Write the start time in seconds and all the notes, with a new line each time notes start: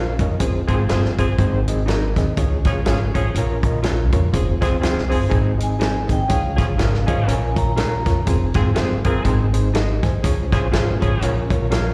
Already playing: A#1 C#4 F4 A#4 C5 F5
0.19 F2 C#4 F4 A#4 D#5, kick, closed hi-hat
0.40 F1 F3 C4 F4 G#4 C5, kick, closed hi-hat
0.68 G#1 F3 C4 F4 G#4 C5, kick, closed hi-hat
0.88 G1 F3 C4 F4 G#4 C5 F5, snare, closed hi-hat
1.05 snare
1.18 G1 F3 C4 F4 G#4 C5, kick, closed hi-hat
1.38 G#1 C4 D#4 G#4 C5, kick, closed hi-hat
1.68 C4 D#4 G#4 D#5, closed hi-hat
1.86 C4 D#4 G#4 A#4 C5 D#5, snare, closed hi-hat
2.16 D#2 C4 D#4 G#4 D#5, kick, snare, closed hi-hat
2.36 C#2 F3 C#4 F4 G#4 C#5, kick, closed hi-hat
2.65 A#1 F3 C#4 F4 G#4 C#5, kick, snare, closed hi-hat
2.85 G#1 F3 C#4 F4 G#4 C#5 F5, snare, closed hi-hat
3.14 A1 F3 C#4 F4 G#4 C#5, kick, closed hi-hat
3.35 A#1 C#4 F4 A#4 C#5, closed hi-hat
3.63 C#4 F4 A#4 D#5, kick, closed hi-hat
3.83 C#4 F4 A#4 C#5 F5, snare, closed hi-hat
4.13 F2 C#4 F4 A#4 C#5, kick, closed hi-hat
4.33 F1 F3 C4 F4 G#4 C5, kick, closed hi-hat
4.47 F2
4.61 D#2 F3 C4 F4 G#4 C5, kick, snare, closed hi-hat
4.72 C#2
4.81 F3 C4 F4 G#4 C5 F5, snare, closed hi-hat
4.97 C2, snare
5.09 G1 F3 C4 F4 G#4 C5, open hi-hat
5.29 G#1 C4 D#4 G#4 C5, kick, closed hi-hat
5.58 C4 D#4 G#4 D#5, closed hi-hat
5.63 G#5
5.78 C4 D#4 G#4 C5 D#5, snare, closed hi-hat
6.07 D#2 C4 D#4 G#4 D#5, kick, closed hi-hat
6.12 G5
6.28 C#2 F3 C#4 F4 G#4 C#5, kick, closed hi-hat
6.32 F5
6.57 A#1 F3 C#4 F4 G#4 C#5, kick, snare, closed hi-hat
6.78 G#1 F3 C#4 F4 G#4 A#4 C#5 F5, snare, closed hi-hat
6.94 snare
7.07 A1 F3 C#4 F4 G#4 D#5 F5, kick, closed hi-hat
7.28 A#1 C#4 F4 A#4 C#5 G#5, closed hi-hat
7.56 C#4 F4 A#4 C#5 A#5, kick, closed hi-hat
7.76 C#4 F4 A#4 C#5 F5, snare, closed hi-hat
8.06 F2 C#4 F4 A#4 C#5, kick, snare, closed hi-hat
8.27 F1 F3 C4 F4 G#4 C5, kick, closed hi-hat
8.54 G#1 F3 C4 F4 G#4 C5, kick, snare, closed hi-hat
8.75 G1 F3 C4 F4 G#4 C5 F5, snare, closed hi-hat
9.04 G1 D#3 C4 F4 G#4 A#4, kick, closed hi-hat
9.25 G#1 C4 D#4 G#4 C5, kick, closed hi-hat
9.54 C4 D#4 G#4 C5, closed hi-hat
9.74 D#4 G4 G#4 C5 D#5, snare, closed hi-hat
10.03 D#2 C5 G#5, kick, snare, closed hi-hat
10.23 C#2 F3 C#4 F4 G#4 C#5, kick, closed hi-hat
10.52 A#1 F3 C#4 F4 G#4 C5, kick, snare, closed hi-hat
10.72 G#1 F3 C#4 F4 G#4 C5 C#5 F5, snare, closed hi-hat
11.00 A1 F3 C#4 F4 G#4 C#5, kick, closed hi-hat
11.21 A#1 C#4 F4 A#4 C#5, closed hi-hat
11.50 C#4 F4 A#4 C#5, kick, closed hi-hat
11.70 C#4 F4 A#4 C#5 F5, snare, closed hi-hat